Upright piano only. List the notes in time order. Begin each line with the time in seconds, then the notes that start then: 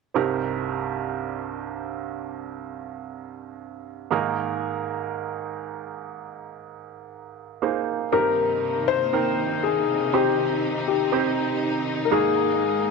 0.14 C2 G2 C4 D#4 G4 A#4
4.11 G#2 D#3 A#3 D#4 G#4 A#4
7.62 A#3 D#4 G#4 C5
8.12 G2 C4 D#4 G4 A#4
9.13 C4 D#4 A#4 G5
10.13 C4 D#4 G4 C5
11.12 C4 D#4 G4 C5
12.11 G#2 D#3 A#3 D#4 G#4 A#4